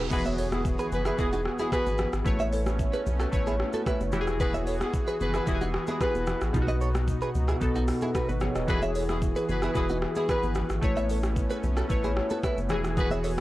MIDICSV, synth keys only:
0, 0, Header, 1, 2, 480
1, 0, Start_track
1, 0, Key_signature, 4, "major"
1, 0, Tempo, 535714
1, 101, Time_signature, 4, 2, 24, 8
1, 12010, End_track
2, 0, Start_track
2, 0, Title_t, "Synth keys"
2, 0, Program_c, 0, 88
2, 0, Control_c, 0, 64, 127
2, 0, Note_on_c, 0, 47, 87
2, 0, Note_on_c, 0, 59, 79
2, 0, Note_on_c, 0, 63, 80
2, 0, Note_on_c, 0, 67, 76
2, 0, Note_on_c, 0, 68, 96
2, 91, Note_on_c, 0, 52, 83
2, 98, Note_off_c, 0, 59, 0
2, 98, Note_on_c, 0, 59, 78
2, 105, Note_on_c, 0, 66, 80
2, 112, Note_off_c, 0, 47, 0
2, 112, Control_c, 0, 64, 0
2, 113, Note_off_c, 0, 68, 0
2, 113, Note_on_c, 0, 68, 96
2, 118, Note_off_c, 0, 67, 0
2, 120, Note_off_c, 0, 63, 0
2, 285, Control_c, 0, 64, 127
2, 848, Note_off_c, 0, 52, 0
2, 852, Note_off_c, 0, 59, 0
2, 855, Note_off_c, 0, 66, 0
2, 859, Note_off_c, 0, 68, 0
2, 1050, Note_on_c, 0, 52, 83
2, 1057, Note_on_c, 0, 59, 79
2, 1065, Note_on_c, 0, 66, 75
2, 1073, Note_on_c, 0, 68, 95
2, 1808, Note_off_c, 0, 52, 0
2, 1811, Note_off_c, 0, 59, 0
2, 1815, Note_off_c, 0, 66, 0
2, 1819, Note_off_c, 0, 68, 0
2, 2010, Note_on_c, 0, 57, 87
2, 2018, Note_on_c, 0, 64, 79
2, 2025, Note_on_c, 0, 71, 81
2, 2033, Note_on_c, 0, 73, 96
2, 2034, Control_c, 0, 64, 0
2, 2183, Control_c, 0, 64, 127
2, 2768, Note_off_c, 0, 57, 0
2, 2772, Note_off_c, 0, 64, 0
2, 2775, Note_off_c, 0, 71, 0
2, 2779, Note_off_c, 0, 73, 0
2, 2970, Note_on_c, 0, 57, 85
2, 2977, Note_on_c, 0, 64, 76
2, 2985, Note_on_c, 0, 71, 75
2, 2992, Note_on_c, 0, 73, 90
2, 3687, Note_off_c, 0, 64, 0
2, 3690, Note_on_c, 0, 52, 88
2, 3695, Note_off_c, 0, 57, 0
2, 3698, Note_on_c, 0, 64, 84
2, 3703, Note_off_c, 0, 71, 0
2, 3705, Note_on_c, 0, 66, 83
2, 3706, Note_off_c, 0, 73, 0
2, 3713, Control_c, 0, 64, 0
2, 3713, Note_on_c, 0, 67, 80
2, 3767, Note_off_c, 0, 67, 0
2, 3770, Note_on_c, 0, 68, 103
2, 3870, Control_c, 0, 64, 127
2, 4465, Note_off_c, 0, 52, 0
2, 4469, Note_off_c, 0, 64, 0
2, 4473, Note_off_c, 0, 66, 0
2, 4505, Note_off_c, 0, 68, 0
2, 4889, Note_on_c, 0, 52, 86
2, 4897, Note_on_c, 0, 64, 74
2, 4905, Note_on_c, 0, 66, 73
2, 4912, Note_on_c, 0, 67, 75
2, 4966, Note_off_c, 0, 67, 0
2, 4970, Note_on_c, 0, 68, 91
2, 5647, Note_off_c, 0, 52, 0
2, 5651, Note_off_c, 0, 64, 0
2, 5655, Note_off_c, 0, 66, 0
2, 5687, Note_off_c, 0, 68, 0
2, 5849, Note_on_c, 0, 47, 89
2, 5857, Note_on_c, 0, 59, 78
2, 5865, Note_on_c, 0, 63, 80
2, 5872, Note_on_c, 0, 65, 77
2, 5873, Control_c, 0, 64, 0
2, 5926, Note_off_c, 0, 65, 0
2, 5929, Note_on_c, 0, 66, 94
2, 6057, Control_c, 0, 64, 127
2, 6607, Note_off_c, 0, 47, 0
2, 6611, Note_off_c, 0, 59, 0
2, 6615, Note_off_c, 0, 63, 0
2, 6647, Note_off_c, 0, 66, 0
2, 6808, Note_on_c, 0, 47, 85
2, 6816, Note_on_c, 0, 59, 76
2, 6823, Note_on_c, 0, 63, 73
2, 6831, Note_on_c, 0, 69, 90
2, 7306, Note_off_c, 0, 69, 0
2, 7425, Note_on_c, 0, 71, 71
2, 7431, Note_on_c, 0, 66, 59
2, 7535, Note_off_c, 0, 71, 0
2, 7538, Note_off_c, 0, 66, 0
2, 7539, Note_on_c, 0, 73, 73
2, 7545, Note_on_c, 0, 68, 61
2, 7567, Note_off_c, 0, 47, 0
2, 7571, Note_off_c, 0, 59, 0
2, 7574, Note_off_c, 0, 63, 0
2, 7659, Note_off_c, 0, 73, 0
2, 7662, Note_off_c, 0, 68, 0
2, 7664, Note_on_c, 0, 75, 65
2, 7669, Note_on_c, 0, 69, 55
2, 7769, Note_on_c, 0, 52, 85
2, 7776, Note_on_c, 0, 64, 84
2, 7784, Note_on_c, 0, 66, 81
2, 7791, Control_c, 0, 64, 0
2, 7791, Note_on_c, 0, 68, 101
2, 7893, Note_off_c, 0, 75, 0
2, 7896, Note_off_c, 0, 69, 0
2, 7940, Control_c, 0, 64, 127
2, 8527, Note_off_c, 0, 52, 0
2, 8530, Note_off_c, 0, 64, 0
2, 8534, Note_off_c, 0, 66, 0
2, 8538, Note_off_c, 0, 68, 0
2, 8729, Note_on_c, 0, 52, 83
2, 8737, Note_on_c, 0, 64, 77
2, 8744, Note_on_c, 0, 66, 76
2, 8751, Note_on_c, 0, 71, 93
2, 9487, Note_off_c, 0, 52, 0
2, 9491, Note_off_c, 0, 64, 0
2, 9495, Note_off_c, 0, 66, 0
2, 9498, Note_off_c, 0, 71, 0
2, 9690, Note_on_c, 0, 57, 92
2, 9697, Note_on_c, 0, 64, 81
2, 9705, Note_on_c, 0, 71, 80
2, 9712, Control_c, 0, 64, 0
2, 9713, Note_on_c, 0, 73, 102
2, 9856, Control_c, 0, 64, 127
2, 10447, Note_off_c, 0, 57, 0
2, 10451, Note_off_c, 0, 64, 0
2, 10455, Note_off_c, 0, 71, 0
2, 10459, Note_off_c, 0, 73, 0
2, 10651, Note_on_c, 0, 57, 83
2, 10659, Note_on_c, 0, 64, 76
2, 10666, Note_on_c, 0, 71, 76
2, 10674, Note_on_c, 0, 73, 95
2, 11368, Note_off_c, 0, 64, 0
2, 11371, Note_on_c, 0, 52, 88
2, 11376, Note_off_c, 0, 57, 0
2, 11378, Note_on_c, 0, 64, 84
2, 11384, Note_off_c, 0, 71, 0
2, 11385, Note_on_c, 0, 66, 83
2, 11387, Note_off_c, 0, 73, 0
2, 11393, Note_on_c, 0, 68, 105
2, 11394, Control_c, 0, 64, 0
2, 11535, Control_c, 0, 64, 127
2, 12010, Note_off_c, 0, 52, 0
2, 12010, Note_off_c, 0, 64, 0
2, 12010, Note_off_c, 0, 66, 0
2, 12010, Note_off_c, 0, 68, 0
2, 12010, End_track
0, 0, End_of_file